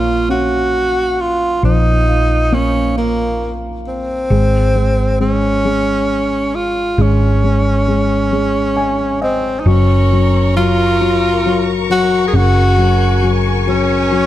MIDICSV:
0, 0, Header, 1, 5, 480
1, 0, Start_track
1, 0, Tempo, 891266
1, 879, Time_signature, 6, 3, 24, 8
1, 7682, End_track
2, 0, Start_track
2, 0, Title_t, "String section"
2, 0, Program_c, 0, 48
2, 5201, Note_on_c, 0, 70, 62
2, 5201, Note_on_c, 0, 85, 70
2, 5202, Note_on_c, 0, 82, 54
2, 6627, Note_off_c, 0, 82, 0
2, 6645, Note_on_c, 0, 80, 60
2, 7682, Note_off_c, 0, 70, 0
2, 7682, Note_off_c, 0, 80, 0
2, 7682, Note_off_c, 0, 85, 0
2, 7682, End_track
3, 0, Start_track
3, 0, Title_t, "Tenor saxophone"
3, 0, Program_c, 1, 66
3, 0, Note_on_c, 1, 65, 75
3, 161, Note_off_c, 1, 65, 0
3, 164, Note_on_c, 1, 66, 83
3, 650, Note_on_c, 1, 65, 72
3, 658, Note_off_c, 1, 66, 0
3, 885, Note_off_c, 1, 65, 0
3, 889, Note_on_c, 1, 63, 81
3, 1368, Note_on_c, 1, 61, 69
3, 1376, Note_off_c, 1, 63, 0
3, 1601, Note_off_c, 1, 61, 0
3, 1604, Note_on_c, 1, 58, 70
3, 1915, Note_off_c, 1, 58, 0
3, 2088, Note_on_c, 1, 60, 82
3, 2783, Note_off_c, 1, 60, 0
3, 2807, Note_on_c, 1, 61, 79
3, 3526, Note_on_c, 1, 65, 78
3, 3535, Note_off_c, 1, 61, 0
3, 3777, Note_on_c, 1, 61, 74
3, 3785, Note_off_c, 1, 65, 0
3, 4966, Note_off_c, 1, 61, 0
3, 4969, Note_on_c, 1, 60, 69
3, 5169, Note_on_c, 1, 63, 46
3, 5177, Note_off_c, 1, 60, 0
3, 5211, Note_on_c, 1, 61, 76
3, 5219, Note_off_c, 1, 63, 0
3, 5686, Note_off_c, 1, 61, 0
3, 5690, Note_on_c, 1, 65, 90
3, 6326, Note_off_c, 1, 65, 0
3, 6417, Note_on_c, 1, 66, 84
3, 6597, Note_off_c, 1, 66, 0
3, 6611, Note_on_c, 1, 68, 60
3, 6658, Note_on_c, 1, 66, 96
3, 6666, Note_off_c, 1, 68, 0
3, 7223, Note_off_c, 1, 66, 0
3, 7374, Note_on_c, 1, 61, 86
3, 7682, Note_off_c, 1, 61, 0
3, 7682, End_track
4, 0, Start_track
4, 0, Title_t, "Upright piano"
4, 0, Program_c, 2, 0
4, 0, Control_c, 2, 64, 127
4, 0, Note_on_c, 2, 58, 41
4, 0, Note_on_c, 2, 77, 38
4, 155, Note_on_c, 2, 61, 44
4, 620, Note_off_c, 2, 77, 0
4, 857, Note_off_c, 2, 58, 0
4, 883, Note_on_c, 2, 53, 55
4, 1096, Note_off_c, 2, 61, 0
4, 1122, Note_on_c, 2, 65, 41
4, 1358, Note_on_c, 2, 58, 44
4, 1592, Note_off_c, 2, 65, 0
4, 1600, Note_on_c, 2, 65, 46
4, 2298, Note_off_c, 2, 58, 0
4, 2299, Note_off_c, 2, 65, 0
4, 2300, Note_off_c, 2, 53, 0
4, 2320, Note_on_c, 2, 56, 53
4, 2326, Control_c, 2, 64, 0
4, 2435, Control_c, 2, 64, 127
4, 2554, Note_off_c, 2, 56, 0
4, 2562, Note_on_c, 2, 56, 42
4, 2794, Note_off_c, 2, 56, 0
4, 2803, Note_on_c, 2, 56, 45
4, 3035, Note_off_c, 2, 56, 0
4, 3043, Note_on_c, 2, 56, 49
4, 3754, Note_off_c, 2, 56, 0
4, 3762, Note_on_c, 2, 56, 50
4, 3997, Note_off_c, 2, 56, 0
4, 4005, Note_on_c, 2, 56, 43
4, 4237, Note_off_c, 2, 56, 0
4, 4245, Note_on_c, 2, 56, 44
4, 4476, Note_off_c, 2, 56, 0
4, 4484, Note_on_c, 2, 56, 47
4, 4721, Note_on_c, 2, 80, 53
4, 4944, Note_off_c, 2, 80, 0
4, 4963, Note_on_c, 2, 75, 54
4, 5181, Note_off_c, 2, 56, 0
4, 5185, Note_off_c, 2, 75, 0
4, 5205, Note_on_c, 2, 54, 57
4, 5208, Control_c, 2, 64, 0
4, 5292, Control_c, 2, 64, 127
4, 5442, Note_off_c, 2, 54, 0
4, 5450, Note_on_c, 2, 54, 45
4, 5680, Note_off_c, 2, 54, 0
4, 5688, Note_on_c, 2, 54, 45
4, 5919, Note_off_c, 2, 54, 0
4, 5927, Note_on_c, 2, 54, 47
4, 6162, Note_off_c, 2, 54, 0
4, 6170, Note_on_c, 2, 54, 49
4, 6399, Note_off_c, 2, 54, 0
4, 6407, Note_on_c, 2, 54, 50
4, 6642, Note_on_c, 2, 49, 61
4, 6871, Note_off_c, 2, 54, 0
4, 6879, Note_on_c, 2, 54, 46
4, 7114, Note_off_c, 2, 54, 0
4, 7122, Note_on_c, 2, 54, 49
4, 7355, Note_off_c, 2, 54, 0
4, 7364, Note_on_c, 2, 54, 52
4, 7593, Note_off_c, 2, 54, 0
4, 7601, Note_on_c, 2, 54, 50
4, 7682, Note_off_c, 2, 49, 0
4, 7682, Note_off_c, 2, 54, 0
4, 7682, End_track
5, 0, Start_track
5, 0, Title_t, "Fingered electric bass"
5, 0, Program_c, 3, 33
5, 0, Note_on_c, 3, 34, 79
5, 857, Note_off_c, 3, 34, 0
5, 878, Note_on_c, 3, 34, 70
5, 2298, Note_off_c, 3, 34, 0
5, 2317, Note_on_c, 3, 32, 78
5, 3737, Note_off_c, 3, 32, 0
5, 3759, Note_on_c, 3, 32, 80
5, 5178, Note_off_c, 3, 32, 0
5, 5200, Note_on_c, 3, 30, 74
5, 6619, Note_off_c, 3, 30, 0
5, 6642, Note_on_c, 3, 30, 80
5, 7682, Note_off_c, 3, 30, 0
5, 7682, End_track
0, 0, End_of_file